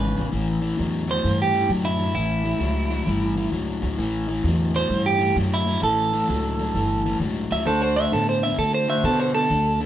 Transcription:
Already playing: upright bass G#1, overdriven electric guitar E2 C#3, clean electric guitar B4
0.16 upright bass A1, overdriven electric guitar E2 C#3
0.32 upright bass A1, overdriven electric guitar A2 E3
0.61 overdriven electric guitar A2 E3
0.77 upright bass E2, overdriven electric guitar A2 F#3
1.07 overdriven electric guitar A2 F#3, clean electric guitar C5
1.24 upright bass G2, overdriven electric guitar A2 E3
1.42 clean electric guitar G4
1.53 overdriven electric guitar A2 E3
1.69 upright bass F#2, overdriven electric guitar A2 F#3
1.85 clean electric guitar E4
1.99 overdriven electric guitar A2 F#3
2.15 upright bass A1, overdriven electric guitar A2 E3, clean electric guitar E4
2.44 overdriven electric guitar A2 E3
2.60 upright bass C#2, overdriven electric guitar A2 F#3
2.90 overdriven electric guitar A2 F#3
3.05 upright bass G1, overdriven electric guitar A2 E3
3.37 overdriven electric guitar A2 E3
3.52 upright bass C#2, overdriven electric guitar A2 F#3
3.82 upright bass D2, overdriven electric guitar A2 F#3
3.98 upright bass A1, overdriven electric guitar A2 E3
4.28 overdriven electric guitar A2 E3
4.44 upright bass E2, overdriven electric guitar A2 F#3
4.74 overdriven electric guitar A2 F#3, clean electric guitar C5
4.89 upright bass G2, overdriven electric guitar A2 E3
5.06 clean electric guitar G4
5.19 overdriven electric guitar A2 E3
5.36 upright bass F#2, overdriven electric guitar A2 F#3
5.54 clean electric guitar E4
5.66 overdriven electric guitar A2 F#3
5.82 upright bass A1, overdriven electric guitar A2 E3, clean electric guitar A4
6.13 overdriven electric guitar A2 E3
6.29 upright bass C#2, overdriven electric guitar A2 F#3
6.59 overdriven electric guitar A2 F#3
6.74 upright bass G1, overdriven electric guitar A2 E3
7.06 overdriven electric guitar A2 E3
7.20 upright bass C#2, overdriven electric guitar A2 F#3
7.51 upright bass C#2, overdriven electric guitar A2 F#3, clean electric guitar E5
7.65 upright bass D2, overdriven electric guitar D3 A3, saxophone section D4 F#4 C5, clean electric guitar A4
7.82 clean electric guitar C5
7.96 overdriven electric guitar D3 A3, clean electric guitar E5
8.12 upright bass A2, overdriven electric guitar D3 B3, clean electric guitar A4
8.29 clean electric guitar C5
8.43 overdriven electric guitar D3 B3, clean electric guitar E5
8.58 upright bass C3, overdriven electric guitar D3 A3, clean electric guitar A4
8.74 clean electric guitar C5
8.88 overdriven electric guitar D3 A3, saxophone section D4 F#4 C5, clean electric guitar E5
9.04 upright bass B2, overdriven electric guitar D3 B3, clean electric guitar A4
9.20 clean electric guitar C5
9.34 overdriven electric guitar D3 B3, clean electric guitar A4
9.50 upright bass D2, overdriven electric guitar D3 A3
9.80 overdriven electric guitar D3 A3

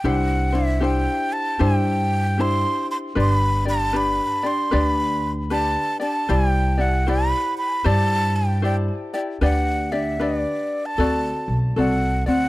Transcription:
0.04 upright bass C2, ukulele D4 E4 G4 C5, flute F#5
0.52 ukulele D4 E4 C5, flute E5
0.80 ukulele D4 E4 G4 C5
0.84 flute G5
1.33 flute A5
1.59 upright bass G2, ukulele D4 E4 G4 C5, flute G5
2.38 ukulele D4 E4 G4 C5, flute C6
2.91 flute C6
3.15 upright bass G1, ukulele D4 G4 B4 D5
3.20 flute C6
3.32 flute B5
3.65 ukulele D4 G4 D5, flute A5
3.93 ukulele D4 G4 B4 D5, flute B5
4.43 ukulele D4 G4 D5, flute C6
4.71 upright bass D2, ukulele D4 G4 B4 D5, flute C6
4.85 flute B5
5.50 ukulele D4 G4 B4 D5, flute A5
6.00 ukulele D4 G4 D5, flute A5
6.29 upright bass C2, ukulele E4 G4 C5 D5, flute G#5
6.49 flute G5
6.78 ukulele E4 G4 D5, flute F#5
7.07 ukulele E4 G4 C5 D5, flute B5
7.58 flute B5
7.84 upright bass G2, ukulele E4 G4 C5 D5, flute A5
8.36 flute G5
8.62 ukulele E4 G4 C5 D5, flute G5
9.14 ukulele E4 G4 D5, flute G5
9.41 upright bass D2, ukulele D4 G4 B4 D5, flute F#5
9.92 ukulele D4 G4 D5, flute E5
10.20 ukulele D4 G4 B4 D5, flute D#5
10.38 flute D5
10.86 flute A5
10.98 upright bass D2, ukulele C4 F#4 A4 D5
11.48 upright bass B1
11.76 upright bass C2, ukulele C4 F#4 A4 D5, flute F#5
12.26 upright bass D2, ukulele C4 F#4 D5, flute F#5

